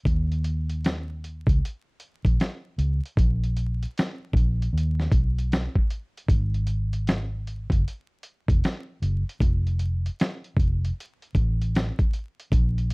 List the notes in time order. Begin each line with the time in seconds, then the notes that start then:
0.05 D#2, kick, closed hi-hat
0.32 closed hi-hat
0.44 closed hi-hat
0.70 closed hi-hat
0.85 snare, closed hi-hat
1.24 closed hi-hat
1.47 C#2, kick, closed hi-hat
1.65 closed hi-hat
2.00 closed hi-hat
2.25 A#1, kick, closed hi-hat
2.40 snare, closed hi-hat
2.78 C#2, closed hi-hat
3.06 closed hi-hat
3.17 A#1, kick, closed hi-hat
3.43 closed hi-hat
3.57 closed hi-hat
3.83 closed hi-hat
3.98 snare, closed hi-hat
4.33 A#1, kick, closed hi-hat
4.62 closed hi-hat
4.73 D#2
4.78 closed hi-hat
5.00 snare
5.11 B1, kick, closed hi-hat
5.38 closed hi-hat
5.52 snare, closed hi-hat
5.75 kick
5.90 closed hi-hat
6.18 closed hi-hat
6.28 G#1, kick, closed hi-hat
6.54 closed hi-hat
6.67 closed hi-hat
6.93 closed hi-hat
7.07 snare, closed hi-hat
7.47 closed hi-hat
7.70 F#1, kick, closed hi-hat
7.88 closed hi-hat
8.23 closed hi-hat
8.48 F1, kick, closed hi-hat
8.64 snare, closed hi-hat
9.02 F#1, closed hi-hat
9.29 closed hi-hat
9.40 F1, kick, closed hi-hat
9.67 closed hi-hat
9.79 closed hi-hat
10.06 closed hi-hat
10.20 snare, closed hi-hat
10.44 closed hi-hat
10.56 F1, kick, closed hi-hat
10.85 closed hi-hat
11.00 closed hi-hat
11.22 closed hi-hat
11.35 A1, kick, closed hi-hat
11.62 closed hi-hat
11.75 snare, closed hi-hat
11.99 kick, closed hi-hat
12.13 closed hi-hat
12.40 closed hi-hat
12.52 A#1, kick, closed hi-hat
12.78 closed hi-hat
12.90 closed hi-hat